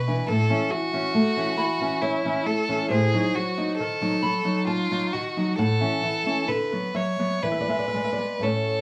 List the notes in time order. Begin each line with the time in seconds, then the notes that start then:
Already playing: B2 B4 G#5
0.07 E3 D4
0.28 A2 A4 A5
0.50 E3 C#4
0.71 E3 F#4
0.93 E3 C#4
1.15 A3
1.37 E3 C#4
1.57 E3 B5
1.81 E3 C#4
2.02 E4 C#5
2.25 E3 C#4
2.46 A3 A4
2.69 E3 C#4
2.90 A2 G#4 C5
3.14 F#3 D#4
3.35 F#3 F#4
3.57 F#3 D#4
3.78 D#3 A4
4.01 F#3 D#4
4.22 F#3 B5
4.45 F#3 D#4
4.67 F4 A5
4.91 F#3 D#4
5.13 D#3 F#4
5.37 F#3 D#4
5.58 A2 A4 F#5
5.81 E3 C#4
6.04 E3
6.26 E3 C#4
6.48 D3 B4
6.72 F#3 B3
6.94 F#3 C#5 E5
7.19 F#3 B3
7.43 E3 B4 D5
7.52 E5
7.61 D5
7.68 G#3 B3 E5
7.79 D5
7.88 E5
7.94 G#3 D5
8.04 E5
8.13 D5
8.18 G#3 B3
8.39 A2 A3 C#4 A4
8.43 C#5